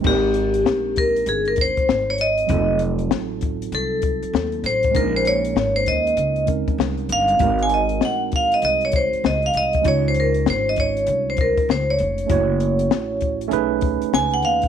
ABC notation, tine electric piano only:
X:1
M:4/4
L:1/8
Q:"Swing 16ths" 1/4=98
K:Ab
V:1 name="Tine electric piano"
[A,CEGB]8 | [_G,CEF=A]8 | [A,B,DEB]4- [A,B,DEB] [A,CDEB]3 | [A,_C=CE_GB]8 |
[A,DEFd]8 | [=A,D_F_Gd]4 [A,^C^D^G=B]4 |]